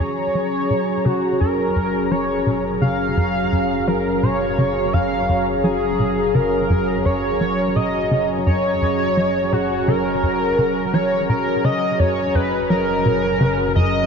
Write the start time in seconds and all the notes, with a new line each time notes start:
Already playing: F#3 C#4 G#4 A#5
0.00 F#1 F#2 C#5
0.35 F#3
0.70 B2
1.05 C#3 F#4
1.40 F#2 A#4
1.76 F#2
2.11 F#3 C#5
2.46 B2
2.82 C#3 F5
3.17 F#2
3.52 F#2
3.87 F#3 A#4
4.23 B2 C#5
4.58 C#3
4.93 F#2 F5
5.29 F#2
5.64 F#3 G#4
5.99 B2
6.35 C#3 A#4
6.70 F#2
7.05 F#2 C#5
7.41 F#3
7.76 B2 D#5
8.11 C#3
8.47 F#2 C#5
8.82 F#2
9.17 F#3
9.52 B2 F#4
9.88 C#3 A#4
10.23 F#2
10.58 C#3
10.94 F3 C#5
11.29 F#1 B2 A#4
11.64 C#3 D#5
11.99 F#2 C#5
12.35 F#2 B4
12.70 F#3 A#4
13.05 B2
13.40 C#3
13.76 F#2 D#5